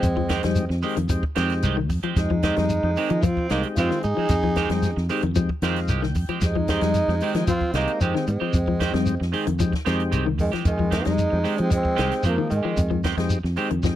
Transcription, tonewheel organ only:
0.44 0.65 G#3 medium
0.44 0.65 C4 medium
0.44 0.65 D#4 medium
0.44 0.65 G4 loud
0.84 0.98 G#3 loud
0.84 0.98 C4 loud
0.84 0.98 D#4 medium
0.84 0.99 G4 loud
1.10 1.25 G#3 medium
1.10 1.25 C4 medium
1.10 1.25 D#4 medium
1.10 1.25 G4 medium
1.36 1.79 G#3 medium
1.36 1.79 C4 medium
1.36 1.79 D#4 medium
1.36 1.80 G4 loud
2.17 2.31 G#3 medium
2.17 2.32 C4 medium
2.17 2.32 D#4 medium
2.17 2.32 G4 medium
2.44 2.65 G#3 medium
2.44 2.65 C4 medium
2.44 2.65 D#4 medium
2.44 2.65 G4 medium
2.83 2.91 G#3 loud
2.83 2.91 C4 medium
2.83 2.91 D#4 loud
2.83 2.91 G4 loud
2.98 3.25 G#3 medium
2.98 3.26 C4 medium
2.98 3.26 D#4 medium
2.98 3.26 A#4 medium
3.51 4.06 G#3 medium
3.51 4.07 C4 medium
3.51 4.07 D#4 medium
3.51 4.07 G4 medium
4.69 4.91 G#3 loud
4.69 4.91 C4 medium
4.69 4.91 D#4 medium
4.69 4.91 G4 loud
5.10 5.24 G#3 loud
5.10 5.24 C4 medium
5.10 5.24 D#4 medium
5.10 5.25 G4 loud
5.36 5.50 G#3 medium
5.36 5.50 C4 medium
5.36 5.50 D#4 medium
5.36 5.50 G4 medium
5.63 6.05 G#3 medium
5.63 6.05 C4 medium
5.63 6.05 D#4 medium
5.63 6.06 F4 loud
5.89 6.39 G5 medium
6.43 6.57 G#3 medium
6.43 6.57 C4 medium
6.43 6.57 D#4 medium
6.43 6.57 G4 medium
6.69 6.90 G#3 medium
6.69 6.90 C4 medium
6.69 6.90 D#4 medium
6.69 6.90 G4 medium
7.08 7.15 G#3 loud
7.08 7.15 C4 loud
7.08 7.16 D#4 medium
7.08 7.16 G4 loud
7.22 7.50 G#3 medium
7.22 7.50 C4 medium
7.22 7.50 D#4 medium
7.22 7.50 G4 medium
7.74 8.30 G#3 medium
7.74 8.31 C4 medium
7.74 8.31 D#4 medium
7.74 8.31 G4 medium
8.94 9.15 G#3 medium
8.94 9.15 C4 medium
8.94 9.15 D#4 medium
8.94 9.15 G4 loud
9.33 9.48 G#3 loud
9.33 9.48 C4 medium
9.33 9.48 D#4 loud
9.33 9.48 G#4 loud
9.60 9.74 G#3 medium
9.60 9.74 C4 medium
9.60 9.74 D#4 medium
9.60 9.75 G4 medium
9.86 10.28 G#3 medium
9.86 10.28 C4 medium
9.86 10.28 D#4 medium
9.86 10.29 G4 loud
10.65 10.80 G#3 medium
10.65 10.80 C4 medium
10.65 10.80 D#4 medium
10.65 10.80 F4 medium
10.92 11.13 G#3 medium
10.92 11.13 C4 medium
10.92 11.13 D#4 medium
10.92 11.13 A#4 medium
11.32 11.39 G#3 medium
11.32 11.39 C4 medium
11.32 11.39 D#4 medium
11.32 11.39 G4 loud
11.45 11.73 G#3 medium
11.45 11.73 C4 medium
11.45 11.73 D#4 medium
11.45 11.73 G4 medium
11.98 12.54 G#3 medium
11.98 12.54 C4 medium
11.98 12.54 D#4 medium
11.98 12.54 G4 medium
13.17 13.38 G#3 medium
13.17 13.38 C4 medium
13.17 13.39 D#4 medium
13.17 13.39 G4 loud
13.57 13.71 G#3 loud
13.57 13.71 C4 loud
13.57 13.72 D#4 medium
13.57 13.72 G4 loud
13.83 13.96 G#3 medium
13.83 13.96 C4 medium
13.83 13.96 D#4 medium
13.83 13.96 G4 medium

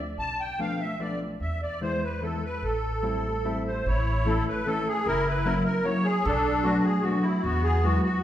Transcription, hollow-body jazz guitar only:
0.59 0.81 F3 soft
0.59 0.81 A3 soft
0.59 0.81 B3 soft
0.59 0.81 D4 soft
1.00 1.21 F3 soft
1.00 1.22 A3 soft
1.00 1.22 B3 soft
1.00 1.22 D4 soft
1.81 2.03 E3 soft
1.81 2.03 G#3 soft
1.81 2.03 B3 soft
1.81 2.03 E4 medium
2.21 2.43 E3 soft
2.21 2.43 G#3 soft
2.21 2.43 B3 soft
2.21 2.44 E4 soft
3.03 3.25 G3 soft
3.03 3.25 A3 soft
3.03 3.25 C4 soft
3.03 3.25 E4 medium
3.45 3.66 G3 soft
3.45 3.67 A3 soft
3.45 3.67 C4 soft
3.45 3.67 E4 medium
4.26 4.47 E3 medium
4.26 4.47 A3 soft
4.26 4.47 C#4 soft
4.26 4.48 E4 medium
4.66 4.87 E3 soft
4.66 4.87 A3 soft
4.66 4.87 C#4 soft
4.66 4.88 E4 medium
5.45 5.67 F#3 soft
5.45 5.67 A#3 medium
5.45 5.67 C#4 medium
5.45 5.67 E4 medium
5.84 6.06 F#3 soft
5.84 6.06 A#3 soft
5.84 6.07 C#4 medium
5.84 6.07 E4 medium
6.65 6.86 F#3 medium
6.65 6.86 A3 medium
6.65 6.86 B3 medium
6.65 6.86 D4 medium
7.05 7.25 F#3 medium
7.05 7.25 A3 soft
7.05 7.26 B3 soft
7.05 7.26 D4 medium
7.84 8.05 F#3 soft
7.84 8.05 G#3 medium
7.84 8.05 B3 soft
7.84 8.06 E4 medium

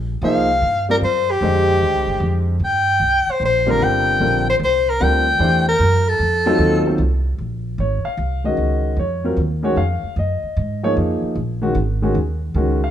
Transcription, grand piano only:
0.23 0.46 F3 medium
0.23 0.46 A#3 medium
0.23 0.46 D#4 medium
0.23 0.46 G#4 medium
0.23 0.47 C5 medium
0.89 1.01 G3 medium
0.89 1.01 C4 medium
0.89 1.01 F4 medium
0.89 1.01 A#4 medium
0.89 1.01 D5 medium
1.42 2.53 D3 medium
1.42 2.53 G#3 medium
1.42 2.54 G4 medium
1.42 2.54 C5 medium
1.42 2.54 D#5 medium
3.66 4.17 D3 medium
3.66 4.17 G3 medium
3.66 4.18 C4 medium
3.66 4.18 F4 medium
3.66 4.18 A#4 medium
4.21 4.44 D3 medium
4.21 4.44 G3 soft
4.21 4.44 C4 medium
4.21 4.45 F4 medium
4.21 4.45 A#4 medium
5.00 5.24 D3 medium
5.00 5.24 G3 medium
5.00 5.24 C4 medium
5.00 5.24 F4 medium
5.00 5.24 A#4 medium
5.39 5.63 E3 medium
5.39 5.63 A3 medium
5.39 5.64 D4 medium
5.39 5.64 G4 medium
5.39 5.64 C5 medium
6.46 6.83 F#3 medium
6.46 6.83 C4 medium
6.46 6.83 D#4 medium
6.46 6.83 F4 medium
6.46 6.84 A4 medium
6.86 6.98 F#3 medium
6.86 6.98 C4 medium
6.86 6.98 D#4 medium
6.86 6.99 F4 medium
6.86 6.99 A4 medium
7.80 8.05 C#5 medium
8.05 8.42 F5 medium
8.44 8.95 D#3 medium
8.44 8.95 G#3 soft
8.44 8.95 C#4 soft
8.44 8.96 F#4 medium
8.44 8.95 D#5 medium
8.99 9.24 C#5 medium
9.24 9.36 F#3 medium
9.24 9.36 C4 medium
9.24 9.37 F4 medium
9.24 9.37 A#4 medium
9.63 9.75 D#3 medium
9.63 9.76 G#3 medium
9.63 9.76 C#4 medium
9.63 9.76 F#4 medium
9.63 9.77 C#5 medium
9.77 10.14 F5 medium
10.19 10.80 D#5 medium
10.83 11.34 F3 medium
10.83 11.34 A#3 medium
10.83 11.34 D#4 medium
10.83 11.34 G#4 medium
10.83 10.92 C#5 medium
11.62 11.74 D#3 medium
11.62 11.74 G#3 medium
11.62 11.74 C#4 medium
11.62 11.75 F#4 medium
12.02 12.14 D#3 medium
12.02 12.14 G#3 medium
12.02 12.15 C#4 medium
12.02 12.15 F#4 medium
12.55 12.79 D#3 medium
12.55 12.79 G#3 medium
12.55 12.79 C#4 medium
12.55 12.79 F#4 medium
12.84 12.91 F5 medium

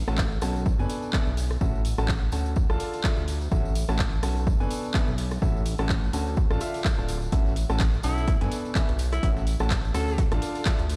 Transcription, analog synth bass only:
0.08 0.39 A1 loud
0.42 0.75 B1 medium
0.79 0.87 F#1 loud
1.27 1.58 B1 medium
1.61 1.94 A1 loud
1.98 2.29 A1 loud
2.33 2.65 D2 medium
2.70 2.78 A1 loud
3.17 3.48 D2 medium
3.52 3.84 A1 loud
3.89 4.20 A1 loud
4.23 4.56 B1 medium
4.60 4.68 F#1 medium
5.08 5.39 B1 medium
5.42 5.75 A1 medium
5.79 6.10 A1 loud
6.13 6.46 D2 medium
6.51 6.59 A1 medium
6.98 7.29 D1 medium
7.32 7.65 A1 loud
7.70 8.01 A1 loud
8.04 8.37 B1 medium
8.41 8.49 F#1 loud
8.89 9.20 B1 medium
9.23 9.56 A1 loud
9.60 9.91 A1 medium
9.95 10.27 D2 medium
10.32 10.40 A1 loud
10.79 10.96 D2 medium

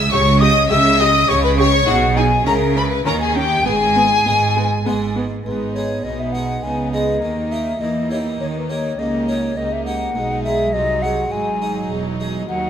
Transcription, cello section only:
0.12 0.64 C#3 medium
0.71 1.22 C#3 medium
1.30 1.81 C#3 medium
1.88 2.40 B2 loud
2.47 2.99 C#3 medium
3.06 3.59 D#3 medium
3.66 4.19 G#2 loud
4.26 4.79 G#2 medium
4.86 5.39 G#2 medium
5.46 6.01 G#2 medium
6.05 6.63 B2 soft
6.64 7.21 C#3 soft
7.23 7.81 D#3 medium
7.81 8.39 E3 soft
8.40 8.97 D#3 soft
8.98 9.56 C#3 soft
9.57 10.14 C#2 soft
10.15 10.72 B2 soft
10.74 11.32 C3 medium
11.32 11.89 G#2 medium
11.91 12.48 E2 soft
12.48 12.70 D#2 medium

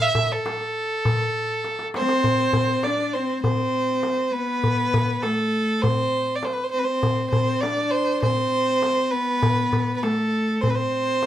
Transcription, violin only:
0.02 0.33 E5 medium
0.32 1.87 A4 medium
1.96 2.85 C5 loud
2.84 3.14 D5 medium
3.13 3.41 C5 medium
3.42 4.33 C5 medium
4.32 5.24 B4 loud
5.23 5.83 A4 medium
5.82 6.37 C5 medium
6.35 6.46 D5 medium
6.45 6.55 C5 medium
6.53 6.65 B4 medium
6.63 6.70 C5 medium
6.71 6.80 C5 medium
6.79 6.85 B4 medium
6.84 7.30 C5 medium
7.30 7.62 C5 medium
7.61 7.92 D5 medium
7.91 8.22 C5 loud
8.22 9.12 C5 loud
9.11 9.95 B4 loud
9.96 10.04 B4 medium
10.02 10.62 A4 medium
10.61 10.71 C5 medium
10.70 10.76 B4 medium
10.74 11.26 C5 loud

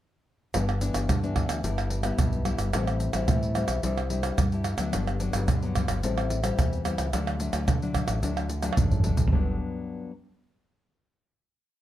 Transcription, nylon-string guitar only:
0.54 1.06 G2 medium
0.54 0.70 E3 medium
0.54 0.71 B3 medium
0.54 0.71 D4 medium
0.81 1.07 E3 medium
0.81 1.07 B3 medium
0.81 1.07 D4 medium
1.23 1.60 E3 medium
1.23 1.60 B3 medium
1.23 1.60 D4 medium
1.64 2.16 G2 medium
1.64 2.01 G3 medium
1.64 2.01 B3 medium
1.64 2.01 E4 medium
2.04 2.41 G3 medium
2.04 2.41 B3 medium
2.04 2.42 E4 medium
2.19 2.71 G2 medium
2.46 2.69 G3 medium
2.46 2.69 B3 medium
2.46 2.69 E4 medium
2.74 3.26 A2 medium
2.74 3.11 G3 medium
2.74 3.11 C4 medium
2.74 3.11 E4 medium
3.14 3.51 G3 medium
3.14 3.51 C4 medium
3.14 3.51 E4 medium
3.29 3.81 E3 medium
3.55 3.79 G3 medium
3.55 3.79 C4 medium
3.55 3.79 E4 medium
3.83 4.35 C3 medium
3.83 4.00 G3 medium
3.83 4.00 D4 medium
3.83 4.00 E4 medium
4.10 4.36 G3 medium
4.10 4.36 D4 soft
4.10 4.37 E4 medium
4.38 4.51 G3 medium
4.52 4.75 G3 medium
4.52 4.76 D4 medium
4.52 4.76 E4 medium
4.78 5.19 F#3 medium
4.78 5.19 B3 medium
4.78 5.20 D4 medium
4.93 5.46 G2 medium
5.20 5.46 F#3 medium
5.20 5.46 B3 medium
5.20 5.47 D4 medium
5.49 6.01 D3 medium
5.63 5.99 F#3 medium
5.63 5.99 B3 medium
5.63 6.00 D4 medium
6.03 6.55 A2 medium
6.03 6.40 G3 medium
6.03 6.40 C4 medium
6.03 6.40 E4 medium
6.43 6.80 G3 medium
6.43 6.81 C4 medium
6.43 6.81 E4 medium
6.58 7.10 E3 medium
6.84 7.08 G3 medium
6.84 7.08 C4 medium
6.84 7.09 E4 medium
7.12 7.65 D3 medium
7.12 7.36 F#3 medium
7.12 7.36 A3 medium
7.12 7.36 D4 medium
7.39 7.77 F#3 medium
7.39 7.77 A3 medium
7.39 7.77 D4 medium
7.68 8.20 A2 medium
7.82 8.19 F#3 medium
7.82 8.19 A3 medium
7.82 8.19 D4 medium
8.22 8.75 D3 medium
8.22 8.48 F#3 medium
8.22 8.49 A3 medium
8.22 8.49 D4 medium
8.62 9.00 F#3 medium
8.62 9.00 A3 medium
8.62 9.00 D4 medium
8.77 9.30 A2 medium
9.04 9.21 F#3 medium
9.04 9.21 A3 medium
9.04 9.21 D4 medium
9.32 10.11 G2 medium
9.32 10.11 F#3 medium
9.32 10.11 B3 medium
9.32 10.11 D4 medium

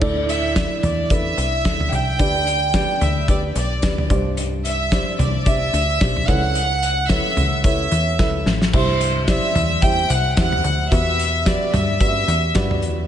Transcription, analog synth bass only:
0.02 0.68 D2 loud
0.83 1.34 E2 medium
1.38 1.67 C2 medium
1.65 1.90 D2 medium
1.92 2.21 C2 medium
2.19 2.86 D2 loud
3.01 3.52 D2 medium
3.56 3.85 B1 medium
3.83 4.08 D2 medium
4.10 5.03 C2 medium
5.19 5.70 C2 medium
5.74 5.99 D2 medium
6.01 6.26 B1 medium
6.28 7.21 C#2 loud
7.37 7.88 C#2 medium
7.92 8.21 E2 medium
8.19 8.45 C#2 medium
8.46 8.72 A1 medium
8.74 9.40 C2 loud
9.55 10.06 E2 medium
10.10 10.35 C2 medium
10.37 10.63 E2 medium
10.64 10.90 D2 medium
10.92 11.58 E2 loud
11.74 12.24 G2 medium
12.28 12.53 E2 medium
12.56 12.84 G2 medium
12.83 13.07 E2 medium

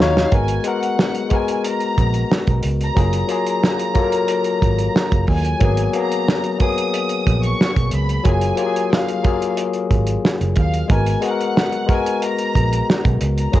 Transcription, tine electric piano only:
0.00 0.25 F#3 medium
0.00 0.33 C#4 medium
0.00 0.34 D#4 medium
0.00 0.27 F4 medium
0.00 0.33 F#4 medium
0.00 0.02 C#5 medium
0.00 0.27 C#5 medium
0.31 0.58 G#3 medium
0.31 0.59 B3 medium
0.31 0.60 F#4 medium
0.31 0.60 A#4 medium
0.64 1.19 G#3 medium
0.64 1.19 B3 medium
0.64 1.20 F#4 medium
0.64 1.20 A#4 medium
1.29 2.38 G#3 medium
1.29 2.39 B3 medium
1.29 2.40 F#4 medium
1.33 2.40 A#4 medium
2.94 3.23 F#3 medium
2.94 3.23 A#3 medium
2.94 3.24 F4 medium
2.94 3.24 G#4 medium
3.28 3.83 F#3 medium
3.28 3.83 A#3 medium
3.28 3.84 F4 medium
3.28 3.85 G#4 medium
3.94 5.03 F#3 medium
3.94 5.03 A#3 medium
3.94 5.04 F4 medium
3.94 4.03 A4 medium
4.04 5.08 A#4 medium
5.59 5.87 F#3 medium
5.59 5.88 A#3 medium
5.59 5.88 B3 medium
5.59 5.89 G#4 medium
5.93 6.47 F#3 medium
5.93 6.48 A#3 medium
5.93 6.48 B3 medium
5.93 6.49 G#4 medium
6.59 7.67 F#3 medium
6.59 7.68 A#3 medium
6.59 7.69 B3 medium
6.59 7.69 G#4 medium
8.24 8.52 F#3 medium
8.24 8.52 A#3 medium
8.24 8.53 F4 medium
8.24 8.53 G#4 medium
8.56 9.11 F#3 medium
8.56 9.12 A#3 medium
8.56 9.13 F4 medium
8.56 8.66 G4 medium
8.66 9.16 G#4 medium
9.23 10.32 F#3 medium
9.23 10.32 A#3 medium
9.23 10.33 F4 medium
9.23 10.33 G#4 medium
10.88 11.16 G#3 medium
10.88 11.16 B3 medium
10.88 11.17 F#4 medium
10.88 11.18 A#4 medium
11.21 11.76 G#3 medium
11.21 11.76 B3 medium
11.21 11.77 F#4 medium
11.21 11.30 G#4 medium
11.31 11.81 A#4 medium
11.86 12.95 G#3 medium
11.86 12.96 B3 medium
11.86 12.96 F#4 medium
11.86 12.97 A#4 medium
13.52 13.60 F#3 medium
13.52 13.60 A#3 medium
13.52 13.60 F4 medium
13.52 13.60 G#4 medium

